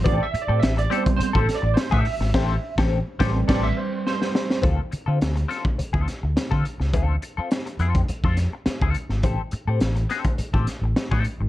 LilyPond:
<<
  \new Staff \with { instrumentName = "Tine electric piano" } { \time 4/4 \key d \dorian \tempo 4 = 104 \tuplet 3/2 { d''8 e''8 d''8 e''8 d''8 c''8 c''8 a'8 d''8 c''8 e''4~ } | e''8. r4 r16 d''16 e''16 c''8 c''4 | r1 | r1 |
r1 | }
  \new Staff \with { instrumentName = "Tine electric piano" } { \time 4/4 \key d \dorian r4. <g b c'>8 r2 | r4. <g c' b'>2~ <g c' b'>8 | r1 | r1 |
r1 | }
  \new Staff \with { instrumentName = "Clean electric guitar" } { \time 4/4 \key d \dorian <c' g' a'>16 r8 <c' g' a'>16 r8 <c' g' a'>16 r8 <c' g' a'>16 r8. <c' g' a'>16 r8 | <c' g' a'>8 r16 <c' g' a'>8 r16 <c' g' a'>8 <c' g' a'>8 r4. | <c' f' a'>16 r8 <c' f' a'>16 r8 <c' f' a'>16 r8 <c' f' a'>16 r8. <c' f' a'>16 r8 | <c' f' a'>16 r8 <c' f' a'>16 r8 <c' f' a'>16 r8 <c' f' a'>16 r8. <c' f' a'>16 r8 |
<c' g' a'>16 r8 <c' g' a'>16 r8 <c' g' a'>16 r8 <c' g' a'>16 r8. <c' g' a'>16 r8 | }
  \new Staff \with { instrumentName = "Fingered electric bass" } { \clef bass \time 4/4 \key d \dorian a,,16 r8 a,16 a,,8 r8. a,,16 r16 a,,16 r16 a,16 r16 gis,,16 | a,,8 r16 a,,8 r16 a,,8 a,,8 r4. | d,16 r8 d16 d,8 r8. d,16 r16 d,16 r16 d16 r16 cis,16 | d,8 r4 f,8 r16 f,8 r8 d,16 r16 gis,,16 |
a,,16 r8 a,16 a,,8 r8. a,,16 r16 a,,16 r16 a,16 r16 gis,,16 | }
  \new DrumStaff \with { instrumentName = "Drums" } \drummode { \time 4/4 <hh bd>8 hh8 <hh sn>16 hh16 hh16 <hh bd>16 hh16 bd16 <hh sn>8 <hh sn>16 bd16 hho16 sn16 | <cymc bd sn>8. <bd sn>16 r8 <bd sn>8 <cymc bd sn>4 sn16 sn16 sn16 sn16 | <hh bd>8 hh8 <hh sn>16 hh16 <hh sn>16 bd16 hh16 bd16 <hh sn>8 <hh sn>16 bd16 hh16 sn16 | <hh bd>8 hh8 <hh sn>16 hh16 hh16 <hh bd>16 hh16 bd16 <hh sn>8 <hh sn>16 bd16 hh16 sn16 |
<hh bd>8 hh8 <hh sn>16 hh16 <hh sn>16 <hh bd>16 hh16 bd16 <hh sn>8 <hh sn>16 bd16 hh8 | }
>>